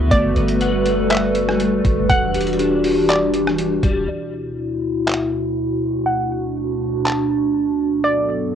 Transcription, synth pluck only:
0.11 1.06 D5 loud
1.11 1.57 E5 medium
2.10 3.05 F#5 loud
3.09 3.56 D5 medium
4.08 5.03 D5 loud
5.07 5.53 E5 medium
6.06 7.01 F#5 loud
7.05 7.52 A5 medium
8.04 8.55 D5 loud

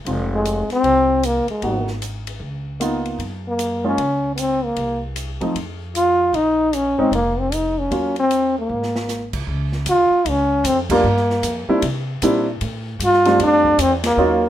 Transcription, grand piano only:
0.07 1.15 G#3 soft
0.07 1.15 C4 soft
0.07 1.16 D#4 soft
0.07 1.16 F4 medium
1.63 1.85 A#3 soft
1.63 1.85 B3 soft
1.63 1.85 D#4 soft
1.63 1.86 F#4 medium
2.80 3.19 A#3 medium
2.80 3.20 B3 medium
2.80 3.20 D#4 medium
2.80 3.20 F4 medium
3.84 3.97 G#3 medium
3.84 3.97 A#3 medium
3.84 3.97 C#4 medium
3.84 3.97 F4 medium
5.41 5.54 F3 medium
5.41 5.54 A3 soft
5.41 5.54 C4 soft
5.41 5.54 D#4 medium
6.98 7.11 G#3 medium
6.98 7.11 C4 medium
6.98 7.11 C#4 medium
6.98 7.11 D#4 medium
7.91 8.13 F#3 soft
7.91 8.13 A#3 soft
7.91 8.14 C#4 soft
7.91 8.14 F4 soft
10.91 11.03 G3 medium
10.91 11.03 A3 medium
10.91 11.03 A#3 medium
10.91 11.04 D4 medium
10.91 11.03 F4 medium
11.69 11.81 G3 medium
11.69 11.82 A#3 medium
11.69 11.81 C4 medium
11.69 11.82 D4 medium
11.69 11.82 E4 medium
12.22 12.45 G3 medium
12.22 12.45 A#3 medium
12.22 12.45 C4 medium
12.22 12.45 D4 medium
12.22 12.45 E4 medium
13.25 13.76 G3 medium
13.25 13.76 A3 medium
13.25 13.76 C4 medium
13.25 13.76 D4 medium
13.25 13.76 F4 medium
14.18 14.40 F#3 medium
14.18 14.41 A#3 medium
14.18 14.41 C#4 medium
14.18 14.41 D#4 medium
14.18 14.41 F4 medium

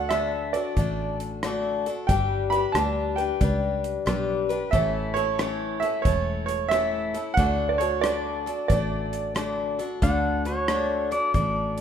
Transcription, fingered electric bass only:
0.00 0.57 D2 medium
0.77 1.89 A1 medium
2.09 2.65 G1 medium
2.75 3.31 D2 medium
3.41 3.97 C#2 medium
4.07 4.63 B1 medium
4.73 5.86 A1 medium
6.05 7.18 E1 medium
7.37 8.50 D2 medium
8.70 9.82 A1 medium
10.02 11.15 D2 medium
11.35 11.81 A1 medium

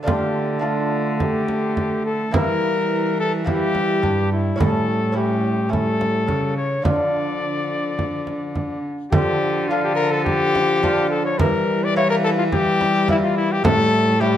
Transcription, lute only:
0.03 2.29 D3 soft
0.03 0.58 A3 soft
0.03 0.60 D4 soft
0.03 0.61 F4 soft
0.59 2.27 A3 soft
0.59 2.28 D4 soft
0.59 2.29 F4 soft
2.31 3.98 E3 medium
2.31 3.42 A#3 soft
2.31 3.42 E4 soft
3.44 4.54 A#3 soft
3.44 4.55 E4 soft
4.02 4.55 G2 medium
4.56 6.23 A2 medium
4.56 5.11 C#4 soft
4.56 5.12 E4 soft
5.12 5.68 C#4 soft
5.12 5.69 E4 soft
5.69 6.80 C#4 soft
5.69 6.80 E4 soft
6.27 6.80 C#3 soft
6.82 8.89 D3 soft
6.82 9.07 D4 soft
6.82 9.08 F4 soft
9.13 11.35 D3 medium
9.70 10.22 D4 medium
9.70 10.22 F4 medium
10.83 11.35 D4 medium
10.83 11.36 F4 medium
11.39 13.60 E3 medium
11.96 12.48 A#3 medium
11.96 12.48 E4 medium
13.08 13.60 A#3 medium
13.08 13.61 E4 medium
13.64 14.37 A2 medium
14.21 14.37 C#4 medium
14.21 14.37 E4 medium

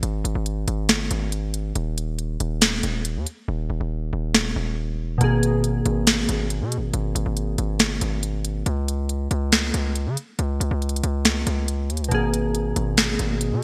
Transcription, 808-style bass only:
0.03 0.24 G#1 loud
0.24 0.35 G#1 loud
0.35 0.66 G#1 loud
0.68 0.91 G#1 loud
0.89 1.10 G1 loud
1.11 1.73 G#1 loud
1.76 2.38 D#1 loud
2.40 2.82 D#1 loud
2.83 3.17 D#1 loud
3.16 3.26 D#2 loud
3.48 3.69 D#1 loud
3.70 3.80 D#1 loud
3.81 4.12 D#1 loud
4.13 4.54 D#1 loud
4.56 5.01 D#1 loud
4.99 5.12 E1 medium
5.10 5.20 D#1 loud
5.21 5.83 G#1 loud
5.86 6.27 G#1 loud
6.29 6.63 G#1 loud
6.61 6.79 B2 loud
6.77 6.93 G#1 medium
6.94 7.14 G#1 loud
7.15 7.25 G#1 loud
7.26 7.57 G#1 loud
7.58 7.81 G#1 loud
7.80 8.00 G1 loud
8.02 8.64 G#1 loud
8.66 9.28 C#2 loud
9.31 9.72 C#2 loud
9.74 10.08 C#2 loud
10.06 10.17 C#3 loud
10.39 10.60 C#2 loud
10.60 10.71 C#2 loud
10.71 11.02 C#2 loud
11.03 11.45 C#2 loud
11.47 11.91 C#2 loud
11.90 12.02 D#2 loud
12.01 12.11 C#2 loud
12.11 12.74 G#1 loud
12.76 13.18 G#1 loud
13.19 13.53 G#1 loud
13.52 13.63 B2 loud

